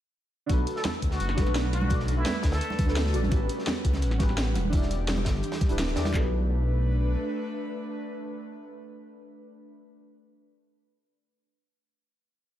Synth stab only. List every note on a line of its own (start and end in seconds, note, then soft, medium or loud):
0.46 1.33 D4 loud
0.46 1.35 F#4 medium
0.51 1.36 A4 medium
0.51 1.37 B4 loud
1.34 1.86 D4 loud
1.34 1.88 F#4 loud
1.39 1.89 A4 medium
1.39 1.90 B4 loud
1.87 2.84 D4 medium
1.87 2.85 F#4 medium
1.92 2.86 A4 medium
1.92 2.87 D5 loud
2.86 3.11 D4 medium
2.86 3.12 F#4 medium
2.86 3.12 A4 medium
2.86 3.13 B4 medium
3.12 3.29 D4 medium
3.12 3.29 F#4 medium
3.12 3.30 A4 medium
3.12 3.30 D5 loud
3.28 4.16 C#4 loud
3.28 4.17 F#4 medium
3.33 4.18 G4 medium
3.33 4.20 B4 loud
4.18 4.53 C#4 loud
4.18 4.54 F#4 medium
4.18 4.54 G4 medium
4.18 4.55 B4 loud
4.69 5.66 D4 medium
4.69 5.67 E4 medium
4.74 5.68 G4 medium
4.74 5.69 D5 medium
5.68 5.94 D4 medium
5.68 5.94 E4 medium
5.68 5.95 G4 medium
5.68 5.95 B4 medium
5.95 6.08 D4 medium
5.95 6.12 E4 medium
5.95 6.12 G4 medium
5.95 6.13 D5 loud
6.09 10.20 D4 medium
6.16 10.26 A4 medium
6.16 10.30 B4 loud